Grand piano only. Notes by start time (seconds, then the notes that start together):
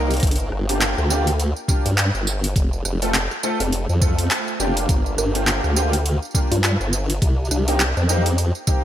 Already playing: A#3 C4 D#4 A#4
0.69 A#3 D4 F4 G4
1.10 A#3 D4 F4 G4
1.69 A#3 D4 F4 G4
3.02 A3 C4 F4 A4
3.43 A3 C4 F4 A4
4.02 A3 C4 F4 A4
4.60 A#3 D4 F4 G4
5.35 A#3 D4 F4 G4
5.76 A#3 D4 F4 G4
6.35 A#3 D4 F4 G4
7.68 A#3 C4 D#4 G4
8.09 A#3 C4 D#4 G4
8.68 A#3 C4 D#4 G4